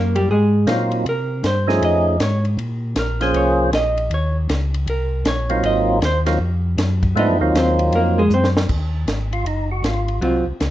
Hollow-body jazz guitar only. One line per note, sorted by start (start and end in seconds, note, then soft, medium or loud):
0.00 0.17 A#3 medium
0.00 0.17 A#4 medium
0.15 0.29 G3 medium
0.15 0.29 G4 medium
0.31 0.66 G#3 medium
0.31 0.66 G#4 medium
1.09 1.43 A#4 medium
1.46 1.81 C5 medium
1.85 2.19 D#5 medium
2.23 2.45 C#5 medium
2.99 3.33 A#4 medium
3.36 3.71 C#5 medium
3.75 4.10 D#5 loud
4.14 4.36 C#5 medium
4.90 5.24 A#4 medium
5.27 5.62 C#5 medium
5.66 6.00 D#5 loud
6.05 6.19 C5 loud
7.19 7.53 D#4 medium
7.19 7.53 D#5 medium
7.57 7.91 C4 medium
7.57 7.91 C5 medium
7.95 8.18 A#3 medium
7.95 8.18 A#4 medium
8.18 8.31 G#3 medium
8.18 8.31 G#4 medium
8.34 8.48 C4 medium
8.34 8.48 C5 medium
10.21 10.43 F#3 medium
10.21 10.44 C4 medium
10.21 10.44 F4 medium